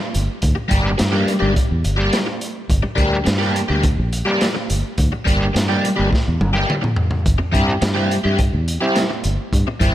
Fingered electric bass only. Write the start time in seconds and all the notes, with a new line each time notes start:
0.16 G1
0.43 D2
0.72 G1
1.01 G2
1.42 G1
1.71 E2
1.85 G1
2.70 G1
2.98 D2
3.27 G2
3.70 D2
3.98 A#1
4.70 G1
4.98 D2
5.27 G1
5.55 G2
5.99 G1
6.28 E2
6.41 G1
7.26 G1
7.54 G2
7.82 G2
8.25 G2
8.53 E2
9.25 G1
9.53 G2
9.81 G1